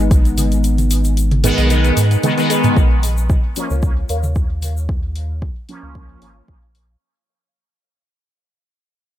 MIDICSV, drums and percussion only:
0, 0, Header, 1, 2, 480
1, 0, Start_track
1, 0, Tempo, 530973
1, 580, Time_signature, 4, 2, 24, 8
1, 8301, End_track
2, 0, Start_track
2, 0, Title_t, "Drums"
2, 99, Note_on_c, 9, 36, 113
2, 100, Note_on_c, 9, 42, 59
2, 102, Note_on_c, 9, 82, 49
2, 190, Note_off_c, 9, 36, 0
2, 190, Note_off_c, 9, 42, 0
2, 192, Note_off_c, 9, 82, 0
2, 229, Note_on_c, 9, 42, 28
2, 232, Note_on_c, 9, 82, 34
2, 319, Note_off_c, 9, 42, 0
2, 323, Note_off_c, 9, 82, 0
2, 339, Note_on_c, 9, 48, 73
2, 340, Note_on_c, 9, 46, 84
2, 341, Note_on_c, 9, 82, 80
2, 430, Note_off_c, 9, 48, 0
2, 431, Note_off_c, 9, 46, 0
2, 431, Note_off_c, 9, 82, 0
2, 468, Note_on_c, 9, 42, 40
2, 470, Note_on_c, 9, 82, 34
2, 559, Note_off_c, 9, 42, 0
2, 560, Note_off_c, 9, 82, 0
2, 578, Note_on_c, 9, 82, 47
2, 580, Note_on_c, 9, 42, 64
2, 668, Note_off_c, 9, 82, 0
2, 670, Note_off_c, 9, 42, 0
2, 708, Note_on_c, 9, 42, 30
2, 708, Note_on_c, 9, 48, 45
2, 711, Note_on_c, 9, 82, 33
2, 799, Note_off_c, 9, 42, 0
2, 799, Note_off_c, 9, 48, 0
2, 801, Note_off_c, 9, 82, 0
2, 819, Note_on_c, 9, 82, 85
2, 820, Note_on_c, 9, 46, 85
2, 909, Note_off_c, 9, 82, 0
2, 910, Note_off_c, 9, 46, 0
2, 944, Note_on_c, 9, 82, 42
2, 948, Note_on_c, 9, 42, 29
2, 1034, Note_off_c, 9, 82, 0
2, 1038, Note_off_c, 9, 42, 0
2, 1059, Note_on_c, 9, 42, 62
2, 1067, Note_on_c, 9, 82, 51
2, 1149, Note_off_c, 9, 42, 0
2, 1157, Note_off_c, 9, 82, 0
2, 1188, Note_on_c, 9, 42, 28
2, 1188, Note_on_c, 9, 48, 77
2, 1278, Note_off_c, 9, 42, 0
2, 1279, Note_off_c, 9, 48, 0
2, 1299, Note_on_c, 9, 46, 89
2, 1300, Note_on_c, 9, 45, 94
2, 1307, Note_on_c, 9, 82, 101
2, 1390, Note_off_c, 9, 45, 0
2, 1390, Note_off_c, 9, 46, 0
2, 1397, Note_off_c, 9, 82, 0
2, 1426, Note_on_c, 9, 82, 38
2, 1428, Note_on_c, 9, 42, 28
2, 1516, Note_off_c, 9, 82, 0
2, 1518, Note_off_c, 9, 42, 0
2, 1537, Note_on_c, 9, 82, 52
2, 1539, Note_on_c, 9, 42, 66
2, 1540, Note_on_c, 9, 48, 44
2, 1627, Note_off_c, 9, 82, 0
2, 1630, Note_off_c, 9, 42, 0
2, 1630, Note_off_c, 9, 48, 0
2, 1668, Note_on_c, 9, 42, 43
2, 1669, Note_on_c, 9, 82, 36
2, 1758, Note_off_c, 9, 42, 0
2, 1759, Note_off_c, 9, 82, 0
2, 1779, Note_on_c, 9, 46, 79
2, 1784, Note_on_c, 9, 82, 101
2, 1870, Note_off_c, 9, 46, 0
2, 1874, Note_off_c, 9, 82, 0
2, 1908, Note_on_c, 9, 42, 28
2, 1913, Note_on_c, 9, 82, 39
2, 1998, Note_off_c, 9, 42, 0
2, 2003, Note_off_c, 9, 82, 0
2, 2019, Note_on_c, 9, 82, 51
2, 2020, Note_on_c, 9, 42, 60
2, 2020, Note_on_c, 9, 48, 77
2, 2110, Note_off_c, 9, 42, 0
2, 2110, Note_off_c, 9, 48, 0
2, 2110, Note_off_c, 9, 82, 0
2, 2148, Note_on_c, 9, 42, 30
2, 2154, Note_on_c, 9, 82, 38
2, 2239, Note_off_c, 9, 42, 0
2, 2245, Note_off_c, 9, 82, 0
2, 2260, Note_on_c, 9, 46, 81
2, 2267, Note_on_c, 9, 82, 83
2, 2351, Note_off_c, 9, 46, 0
2, 2358, Note_off_c, 9, 82, 0
2, 2383, Note_on_c, 9, 82, 40
2, 2388, Note_on_c, 9, 45, 99
2, 2388, Note_on_c, 9, 48, 45
2, 2389, Note_on_c, 9, 42, 43
2, 2474, Note_off_c, 9, 82, 0
2, 2479, Note_off_c, 9, 42, 0
2, 2479, Note_off_c, 9, 45, 0
2, 2479, Note_off_c, 9, 48, 0
2, 2500, Note_on_c, 9, 36, 113
2, 2500, Note_on_c, 9, 48, 45
2, 2504, Note_on_c, 9, 82, 35
2, 2590, Note_off_c, 9, 36, 0
2, 2591, Note_off_c, 9, 48, 0
2, 2594, Note_off_c, 9, 82, 0
2, 2740, Note_on_c, 9, 46, 83
2, 2743, Note_on_c, 9, 82, 85
2, 2830, Note_off_c, 9, 46, 0
2, 2834, Note_off_c, 9, 82, 0
2, 2868, Note_on_c, 9, 82, 50
2, 2959, Note_off_c, 9, 82, 0
2, 2980, Note_on_c, 9, 36, 108
2, 2980, Note_on_c, 9, 48, 79
2, 2980, Note_on_c, 9, 82, 43
2, 3070, Note_off_c, 9, 36, 0
2, 3070, Note_off_c, 9, 48, 0
2, 3071, Note_off_c, 9, 82, 0
2, 3218, Note_on_c, 9, 82, 83
2, 3220, Note_on_c, 9, 46, 87
2, 3309, Note_off_c, 9, 82, 0
2, 3310, Note_off_c, 9, 46, 0
2, 3348, Note_on_c, 9, 82, 49
2, 3349, Note_on_c, 9, 48, 42
2, 3438, Note_off_c, 9, 82, 0
2, 3439, Note_off_c, 9, 48, 0
2, 3457, Note_on_c, 9, 82, 41
2, 3460, Note_on_c, 9, 36, 116
2, 3547, Note_off_c, 9, 82, 0
2, 3550, Note_off_c, 9, 36, 0
2, 3699, Note_on_c, 9, 82, 87
2, 3700, Note_on_c, 9, 46, 78
2, 3789, Note_off_c, 9, 82, 0
2, 3790, Note_off_c, 9, 46, 0
2, 3826, Note_on_c, 9, 82, 52
2, 3828, Note_on_c, 9, 48, 79
2, 3916, Note_off_c, 9, 82, 0
2, 3919, Note_off_c, 9, 48, 0
2, 3935, Note_on_c, 9, 82, 33
2, 3940, Note_on_c, 9, 36, 107
2, 4025, Note_off_c, 9, 82, 0
2, 4030, Note_off_c, 9, 36, 0
2, 4180, Note_on_c, 9, 46, 82
2, 4180, Note_on_c, 9, 48, 43
2, 4182, Note_on_c, 9, 82, 82
2, 4270, Note_off_c, 9, 46, 0
2, 4270, Note_off_c, 9, 48, 0
2, 4272, Note_off_c, 9, 82, 0
2, 4311, Note_on_c, 9, 82, 45
2, 4402, Note_off_c, 9, 82, 0
2, 4420, Note_on_c, 9, 36, 116
2, 4510, Note_off_c, 9, 36, 0
2, 4660, Note_on_c, 9, 46, 79
2, 4751, Note_off_c, 9, 46, 0
2, 4900, Note_on_c, 9, 36, 115
2, 4991, Note_off_c, 9, 36, 0
2, 5141, Note_on_c, 9, 46, 82
2, 5231, Note_off_c, 9, 46, 0
2, 5380, Note_on_c, 9, 36, 114
2, 5471, Note_off_c, 9, 36, 0
2, 5621, Note_on_c, 9, 46, 75
2, 5711, Note_off_c, 9, 46, 0
2, 5860, Note_on_c, 9, 36, 104
2, 5951, Note_off_c, 9, 36, 0
2, 6101, Note_on_c, 9, 46, 74
2, 6191, Note_off_c, 9, 46, 0
2, 8301, End_track
0, 0, End_of_file